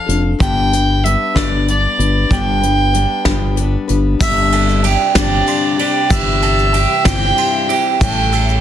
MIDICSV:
0, 0, Header, 1, 7, 480
1, 0, Start_track
1, 0, Tempo, 634249
1, 304, Time_signature, 6, 3, 24, 8
1, 6514, End_track
2, 0, Start_track
2, 0, Title_t, "Fiddle"
2, 0, Program_c, 0, 110
2, 0, Note_on_c, 0, 77, 96
2, 125, Note_off_c, 0, 77, 0
2, 308, Note_on_c, 0, 79, 102
2, 785, Note_on_c, 0, 76, 86
2, 797, Note_off_c, 0, 79, 0
2, 1031, Note_on_c, 0, 74, 91
2, 1043, Note_off_c, 0, 76, 0
2, 1268, Note_off_c, 0, 74, 0
2, 1282, Note_on_c, 0, 74, 93
2, 1752, Note_on_c, 0, 79, 92
2, 1764, Note_off_c, 0, 74, 0
2, 2708, Note_off_c, 0, 79, 0
2, 3183, Note_on_c, 0, 76, 111
2, 3633, Note_off_c, 0, 76, 0
2, 3905, Note_on_c, 0, 74, 86
2, 4354, Note_off_c, 0, 74, 0
2, 4377, Note_on_c, 0, 74, 87
2, 4621, Note_on_c, 0, 76, 98
2, 4632, Note_off_c, 0, 74, 0
2, 5334, Note_on_c, 0, 79, 113
2, 5345, Note_off_c, 0, 76, 0
2, 5877, Note_off_c, 0, 79, 0
2, 6060, Note_on_c, 0, 79, 96
2, 6509, Note_off_c, 0, 79, 0
2, 6514, End_track
3, 0, Start_track
3, 0, Title_t, "Mandolin"
3, 0, Program_c, 1, 25
3, 3426, Note_on_c, 1, 69, 80
3, 3660, Note_off_c, 1, 69, 0
3, 3667, Note_on_c, 1, 67, 84
3, 3898, Note_off_c, 1, 67, 0
3, 3908, Note_on_c, 1, 67, 75
3, 4140, Note_off_c, 1, 67, 0
3, 4143, Note_on_c, 1, 65, 75
3, 4379, Note_off_c, 1, 65, 0
3, 4387, Note_on_c, 1, 67, 74
3, 4620, Note_off_c, 1, 67, 0
3, 4862, Note_on_c, 1, 69, 78
3, 5097, Note_off_c, 1, 69, 0
3, 5104, Note_on_c, 1, 67, 81
3, 5333, Note_off_c, 1, 67, 0
3, 5342, Note_on_c, 1, 67, 84
3, 5577, Note_off_c, 1, 67, 0
3, 5586, Note_on_c, 1, 65, 80
3, 5818, Note_off_c, 1, 65, 0
3, 5821, Note_on_c, 1, 67, 80
3, 6056, Note_off_c, 1, 67, 0
3, 6301, Note_on_c, 1, 69, 81
3, 6514, Note_off_c, 1, 69, 0
3, 6514, End_track
4, 0, Start_track
4, 0, Title_t, "Steel-string acoustic guitar"
4, 0, Program_c, 2, 25
4, 48, Note_on_c, 2, 69, 49
4, 60, Note_on_c, 2, 65, 41
4, 73, Note_on_c, 2, 62, 39
4, 292, Note_on_c, 2, 43, 73
4, 296, Note_off_c, 2, 69, 0
4, 298, Note_off_c, 2, 62, 0
4, 299, Note_on_c, 2, 50, 73
4, 302, Note_off_c, 2, 65, 0
4, 302, Note_on_c, 2, 55, 66
4, 303, Note_on_c, 2, 59, 80
4, 307, Note_on_c, 2, 62, 74
4, 310, Note_on_c, 2, 71, 86
4, 533, Note_off_c, 2, 71, 0
4, 538, Note_off_c, 2, 43, 0
4, 542, Note_off_c, 2, 50, 0
4, 542, Note_on_c, 2, 71, 50
4, 543, Note_off_c, 2, 55, 0
4, 543, Note_off_c, 2, 62, 0
4, 544, Note_off_c, 2, 59, 0
4, 552, Note_on_c, 2, 62, 48
4, 560, Note_on_c, 2, 59, 44
4, 570, Note_on_c, 2, 55, 43
4, 771, Note_off_c, 2, 55, 0
4, 781, Note_on_c, 2, 55, 60
4, 783, Note_off_c, 2, 59, 0
4, 783, Note_off_c, 2, 71, 0
4, 788, Note_off_c, 2, 62, 0
4, 792, Note_on_c, 2, 59, 55
4, 797, Note_on_c, 2, 62, 59
4, 806, Note_on_c, 2, 71, 64
4, 1009, Note_off_c, 2, 71, 0
4, 1014, Note_off_c, 2, 62, 0
4, 1018, Note_off_c, 2, 59, 0
4, 1018, Note_on_c, 2, 71, 72
4, 1023, Note_off_c, 2, 55, 0
4, 1024, Note_on_c, 2, 62, 68
4, 1027, Note_on_c, 2, 59, 65
4, 1031, Note_on_c, 2, 50, 58
4, 1034, Note_on_c, 2, 55, 55
4, 1036, Note_on_c, 2, 43, 53
4, 1252, Note_off_c, 2, 55, 0
4, 1261, Note_on_c, 2, 55, 54
4, 1262, Note_off_c, 2, 71, 0
4, 1263, Note_off_c, 2, 59, 0
4, 1264, Note_off_c, 2, 62, 0
4, 1268, Note_off_c, 2, 50, 0
4, 1270, Note_off_c, 2, 43, 0
4, 1272, Note_on_c, 2, 59, 54
4, 1276, Note_on_c, 2, 62, 54
4, 1285, Note_on_c, 2, 71, 55
4, 1497, Note_off_c, 2, 71, 0
4, 1503, Note_off_c, 2, 55, 0
4, 1506, Note_on_c, 2, 71, 52
4, 1508, Note_off_c, 2, 59, 0
4, 1508, Note_off_c, 2, 62, 0
4, 1518, Note_on_c, 2, 62, 48
4, 1520, Note_on_c, 2, 59, 44
4, 1529, Note_on_c, 2, 55, 44
4, 1735, Note_on_c, 2, 43, 74
4, 1737, Note_off_c, 2, 55, 0
4, 1741, Note_off_c, 2, 59, 0
4, 1744, Note_off_c, 2, 62, 0
4, 1744, Note_on_c, 2, 50, 76
4, 1745, Note_off_c, 2, 71, 0
4, 1746, Note_on_c, 2, 55, 76
4, 1750, Note_on_c, 2, 59, 83
4, 1753, Note_on_c, 2, 62, 73
4, 1758, Note_on_c, 2, 71, 84
4, 1967, Note_off_c, 2, 71, 0
4, 1976, Note_on_c, 2, 71, 49
4, 1979, Note_off_c, 2, 62, 0
4, 1980, Note_off_c, 2, 43, 0
4, 1984, Note_off_c, 2, 50, 0
4, 1986, Note_off_c, 2, 55, 0
4, 1987, Note_off_c, 2, 59, 0
4, 1989, Note_on_c, 2, 62, 49
4, 1995, Note_on_c, 2, 59, 41
4, 1998, Note_on_c, 2, 55, 41
4, 2210, Note_off_c, 2, 55, 0
4, 2214, Note_off_c, 2, 59, 0
4, 2219, Note_on_c, 2, 55, 61
4, 2220, Note_off_c, 2, 71, 0
4, 2223, Note_on_c, 2, 59, 54
4, 2227, Note_off_c, 2, 62, 0
4, 2236, Note_on_c, 2, 62, 61
4, 2240, Note_on_c, 2, 71, 61
4, 2448, Note_off_c, 2, 71, 0
4, 2452, Note_off_c, 2, 62, 0
4, 2455, Note_off_c, 2, 59, 0
4, 2457, Note_on_c, 2, 71, 74
4, 2461, Note_on_c, 2, 62, 73
4, 2462, Note_off_c, 2, 55, 0
4, 2464, Note_on_c, 2, 59, 71
4, 2470, Note_on_c, 2, 50, 62
4, 2470, Note_on_c, 2, 55, 65
4, 2474, Note_on_c, 2, 43, 67
4, 2686, Note_off_c, 2, 55, 0
4, 2696, Note_on_c, 2, 55, 61
4, 2698, Note_off_c, 2, 59, 0
4, 2701, Note_off_c, 2, 71, 0
4, 2703, Note_off_c, 2, 62, 0
4, 2707, Note_off_c, 2, 50, 0
4, 2707, Note_on_c, 2, 59, 64
4, 2709, Note_off_c, 2, 43, 0
4, 2716, Note_on_c, 2, 62, 59
4, 2722, Note_on_c, 2, 71, 66
4, 2925, Note_off_c, 2, 71, 0
4, 2934, Note_on_c, 2, 71, 59
4, 2935, Note_off_c, 2, 62, 0
4, 2939, Note_off_c, 2, 59, 0
4, 2940, Note_off_c, 2, 55, 0
4, 2945, Note_on_c, 2, 62, 55
4, 2949, Note_on_c, 2, 59, 50
4, 2960, Note_on_c, 2, 55, 49
4, 3171, Note_off_c, 2, 55, 0
4, 3173, Note_on_c, 2, 43, 75
4, 3176, Note_off_c, 2, 62, 0
4, 3179, Note_off_c, 2, 71, 0
4, 3181, Note_on_c, 2, 50, 81
4, 3181, Note_on_c, 2, 55, 80
4, 3182, Note_off_c, 2, 59, 0
4, 3185, Note_on_c, 2, 60, 79
4, 3185, Note_on_c, 2, 62, 82
4, 3191, Note_on_c, 2, 67, 79
4, 3647, Note_off_c, 2, 55, 0
4, 3650, Note_on_c, 2, 55, 54
4, 3659, Note_off_c, 2, 43, 0
4, 3660, Note_off_c, 2, 60, 0
4, 3663, Note_off_c, 2, 50, 0
4, 3663, Note_off_c, 2, 62, 0
4, 3663, Note_on_c, 2, 60, 61
4, 3672, Note_on_c, 2, 62, 59
4, 3675, Note_off_c, 2, 67, 0
4, 3678, Note_on_c, 2, 67, 61
4, 3889, Note_off_c, 2, 67, 0
4, 3896, Note_off_c, 2, 62, 0
4, 3897, Note_off_c, 2, 55, 0
4, 3898, Note_on_c, 2, 67, 71
4, 3901, Note_off_c, 2, 60, 0
4, 3905, Note_on_c, 2, 62, 67
4, 3910, Note_on_c, 2, 50, 64
4, 3910, Note_on_c, 2, 60, 58
4, 3914, Note_on_c, 2, 55, 66
4, 3917, Note_on_c, 2, 43, 59
4, 4366, Note_off_c, 2, 67, 0
4, 4369, Note_on_c, 2, 67, 51
4, 4370, Note_off_c, 2, 62, 0
4, 4379, Note_on_c, 2, 62, 47
4, 4381, Note_off_c, 2, 60, 0
4, 4387, Note_off_c, 2, 50, 0
4, 4390, Note_off_c, 2, 43, 0
4, 4391, Note_on_c, 2, 60, 44
4, 4395, Note_off_c, 2, 55, 0
4, 4398, Note_on_c, 2, 55, 41
4, 4607, Note_off_c, 2, 55, 0
4, 4608, Note_on_c, 2, 43, 82
4, 4612, Note_off_c, 2, 60, 0
4, 4615, Note_on_c, 2, 52, 86
4, 4616, Note_off_c, 2, 67, 0
4, 4617, Note_on_c, 2, 55, 81
4, 4621, Note_off_c, 2, 62, 0
4, 4621, Note_on_c, 2, 60, 78
4, 4624, Note_on_c, 2, 64, 87
4, 4625, Note_on_c, 2, 67, 81
4, 5086, Note_off_c, 2, 55, 0
4, 5089, Note_on_c, 2, 55, 52
4, 5092, Note_off_c, 2, 60, 0
4, 5095, Note_off_c, 2, 43, 0
4, 5101, Note_on_c, 2, 60, 63
4, 5107, Note_off_c, 2, 64, 0
4, 5110, Note_on_c, 2, 64, 62
4, 5113, Note_off_c, 2, 67, 0
4, 5116, Note_on_c, 2, 67, 71
4, 5321, Note_off_c, 2, 67, 0
4, 5328, Note_off_c, 2, 64, 0
4, 5330, Note_off_c, 2, 60, 0
4, 5330, Note_on_c, 2, 67, 75
4, 5334, Note_off_c, 2, 55, 0
4, 5337, Note_on_c, 2, 64, 67
4, 5339, Note_on_c, 2, 60, 71
4, 5343, Note_on_c, 2, 55, 67
4, 5350, Note_on_c, 2, 43, 59
4, 5797, Note_off_c, 2, 67, 0
4, 5806, Note_on_c, 2, 67, 56
4, 5810, Note_off_c, 2, 64, 0
4, 5814, Note_off_c, 2, 60, 0
4, 5819, Note_on_c, 2, 64, 48
4, 5822, Note_off_c, 2, 55, 0
4, 5823, Note_on_c, 2, 60, 52
4, 5825, Note_off_c, 2, 43, 0
4, 5831, Note_on_c, 2, 55, 43
4, 6052, Note_off_c, 2, 55, 0
4, 6053, Note_off_c, 2, 67, 0
4, 6057, Note_on_c, 2, 45, 77
4, 6059, Note_off_c, 2, 52, 0
4, 6060, Note_off_c, 2, 64, 0
4, 6061, Note_on_c, 2, 55, 78
4, 6062, Note_off_c, 2, 60, 0
4, 6062, Note_on_c, 2, 52, 81
4, 6068, Note_on_c, 2, 61, 83
4, 6069, Note_on_c, 2, 64, 77
4, 6070, Note_on_c, 2, 69, 95
4, 6514, Note_off_c, 2, 45, 0
4, 6514, Note_off_c, 2, 52, 0
4, 6514, Note_off_c, 2, 55, 0
4, 6514, Note_off_c, 2, 61, 0
4, 6514, Note_off_c, 2, 64, 0
4, 6514, Note_off_c, 2, 69, 0
4, 6514, End_track
5, 0, Start_track
5, 0, Title_t, "String section"
5, 0, Program_c, 3, 48
5, 3186, Note_on_c, 3, 67, 85
5, 3189, Note_on_c, 3, 48, 69
5, 3189, Note_on_c, 3, 62, 64
5, 3191, Note_on_c, 3, 55, 67
5, 4611, Note_off_c, 3, 62, 0
5, 4619, Note_on_c, 3, 76, 68
5, 6035, Note_off_c, 3, 48, 0
5, 6036, Note_off_c, 3, 55, 0
5, 6077, Note_on_c, 3, 49, 74
5, 6078, Note_on_c, 3, 57, 64
5, 6514, Note_off_c, 3, 49, 0
5, 6514, Note_off_c, 3, 57, 0
5, 6514, Note_off_c, 3, 67, 0
5, 6514, Note_off_c, 3, 76, 0
5, 6514, End_track
6, 0, Start_track
6, 0, Title_t, "Fingered electric bass"
6, 0, Program_c, 4, 33
6, 62, Note_on_c, 4, 29, 92
6, 250, Note_off_c, 4, 29, 0
6, 305, Note_on_c, 4, 31, 87
6, 866, Note_off_c, 4, 31, 0
6, 1029, Note_on_c, 4, 31, 82
6, 1401, Note_off_c, 4, 31, 0
6, 1504, Note_on_c, 4, 31, 96
6, 1692, Note_off_c, 4, 31, 0
6, 1743, Note_on_c, 4, 31, 83
6, 2305, Note_off_c, 4, 31, 0
6, 2465, Note_on_c, 4, 31, 90
6, 2839, Note_off_c, 4, 31, 0
6, 2947, Note_on_c, 4, 31, 90
6, 3133, Note_off_c, 4, 31, 0
6, 3185, Note_on_c, 4, 31, 87
6, 3745, Note_off_c, 4, 31, 0
6, 3904, Note_on_c, 4, 31, 102
6, 4091, Note_off_c, 4, 31, 0
6, 4624, Note_on_c, 4, 31, 92
6, 5184, Note_off_c, 4, 31, 0
6, 5340, Note_on_c, 4, 31, 107
6, 5527, Note_off_c, 4, 31, 0
6, 6062, Note_on_c, 4, 33, 95
6, 6514, Note_off_c, 4, 33, 0
6, 6514, End_track
7, 0, Start_track
7, 0, Title_t, "Drums"
7, 70, Note_on_c, 9, 42, 66
7, 145, Note_off_c, 9, 42, 0
7, 305, Note_on_c, 9, 36, 96
7, 308, Note_on_c, 9, 42, 72
7, 381, Note_off_c, 9, 36, 0
7, 384, Note_off_c, 9, 42, 0
7, 553, Note_on_c, 9, 42, 64
7, 629, Note_off_c, 9, 42, 0
7, 797, Note_on_c, 9, 42, 65
7, 872, Note_off_c, 9, 42, 0
7, 1028, Note_on_c, 9, 36, 77
7, 1033, Note_on_c, 9, 38, 98
7, 1033, Note_on_c, 9, 42, 81
7, 1103, Note_off_c, 9, 36, 0
7, 1109, Note_off_c, 9, 38, 0
7, 1109, Note_off_c, 9, 42, 0
7, 1273, Note_on_c, 9, 42, 58
7, 1348, Note_off_c, 9, 42, 0
7, 1512, Note_on_c, 9, 42, 62
7, 1588, Note_off_c, 9, 42, 0
7, 1746, Note_on_c, 9, 36, 96
7, 1750, Note_on_c, 9, 42, 74
7, 1822, Note_off_c, 9, 36, 0
7, 1825, Note_off_c, 9, 42, 0
7, 1991, Note_on_c, 9, 42, 56
7, 2066, Note_off_c, 9, 42, 0
7, 2227, Note_on_c, 9, 42, 57
7, 2302, Note_off_c, 9, 42, 0
7, 2460, Note_on_c, 9, 38, 103
7, 2460, Note_on_c, 9, 42, 71
7, 2463, Note_on_c, 9, 36, 70
7, 2536, Note_off_c, 9, 38, 0
7, 2536, Note_off_c, 9, 42, 0
7, 2539, Note_off_c, 9, 36, 0
7, 2701, Note_on_c, 9, 42, 54
7, 2777, Note_off_c, 9, 42, 0
7, 2943, Note_on_c, 9, 42, 59
7, 3018, Note_off_c, 9, 42, 0
7, 3183, Note_on_c, 9, 36, 109
7, 3183, Note_on_c, 9, 49, 100
7, 3190, Note_on_c, 9, 82, 101
7, 3258, Note_off_c, 9, 36, 0
7, 3259, Note_off_c, 9, 49, 0
7, 3266, Note_off_c, 9, 82, 0
7, 3423, Note_on_c, 9, 51, 66
7, 3431, Note_on_c, 9, 82, 29
7, 3499, Note_off_c, 9, 51, 0
7, 3507, Note_off_c, 9, 82, 0
7, 3551, Note_on_c, 9, 82, 31
7, 3627, Note_off_c, 9, 82, 0
7, 3661, Note_on_c, 9, 51, 67
7, 3670, Note_on_c, 9, 82, 31
7, 3736, Note_off_c, 9, 51, 0
7, 3746, Note_off_c, 9, 82, 0
7, 3899, Note_on_c, 9, 38, 104
7, 3899, Note_on_c, 9, 51, 89
7, 3901, Note_on_c, 9, 36, 79
7, 3906, Note_on_c, 9, 82, 99
7, 3974, Note_off_c, 9, 38, 0
7, 3974, Note_off_c, 9, 51, 0
7, 3977, Note_off_c, 9, 36, 0
7, 3981, Note_off_c, 9, 82, 0
7, 4139, Note_on_c, 9, 82, 29
7, 4143, Note_on_c, 9, 51, 59
7, 4215, Note_off_c, 9, 82, 0
7, 4219, Note_off_c, 9, 51, 0
7, 4382, Note_on_c, 9, 51, 67
7, 4458, Note_off_c, 9, 51, 0
7, 4619, Note_on_c, 9, 51, 83
7, 4620, Note_on_c, 9, 36, 106
7, 4622, Note_on_c, 9, 82, 99
7, 4695, Note_off_c, 9, 51, 0
7, 4696, Note_off_c, 9, 36, 0
7, 4698, Note_off_c, 9, 82, 0
7, 4862, Note_on_c, 9, 51, 63
7, 4867, Note_on_c, 9, 82, 29
7, 4937, Note_off_c, 9, 51, 0
7, 4943, Note_off_c, 9, 82, 0
7, 4985, Note_on_c, 9, 82, 32
7, 5061, Note_off_c, 9, 82, 0
7, 5099, Note_on_c, 9, 51, 64
7, 5109, Note_on_c, 9, 82, 31
7, 5174, Note_off_c, 9, 51, 0
7, 5184, Note_off_c, 9, 82, 0
7, 5336, Note_on_c, 9, 38, 118
7, 5336, Note_on_c, 9, 51, 87
7, 5340, Note_on_c, 9, 36, 86
7, 5349, Note_on_c, 9, 82, 89
7, 5412, Note_off_c, 9, 38, 0
7, 5412, Note_off_c, 9, 51, 0
7, 5416, Note_off_c, 9, 36, 0
7, 5424, Note_off_c, 9, 82, 0
7, 5582, Note_on_c, 9, 51, 59
7, 5589, Note_on_c, 9, 82, 25
7, 5658, Note_off_c, 9, 51, 0
7, 5664, Note_off_c, 9, 82, 0
7, 5825, Note_on_c, 9, 51, 57
7, 5900, Note_off_c, 9, 51, 0
7, 6062, Note_on_c, 9, 36, 113
7, 6063, Note_on_c, 9, 82, 82
7, 6068, Note_on_c, 9, 51, 83
7, 6138, Note_off_c, 9, 36, 0
7, 6139, Note_off_c, 9, 82, 0
7, 6143, Note_off_c, 9, 51, 0
7, 6299, Note_on_c, 9, 82, 26
7, 6305, Note_on_c, 9, 51, 56
7, 6374, Note_off_c, 9, 82, 0
7, 6381, Note_off_c, 9, 51, 0
7, 6423, Note_on_c, 9, 82, 27
7, 6499, Note_off_c, 9, 82, 0
7, 6514, End_track
0, 0, End_of_file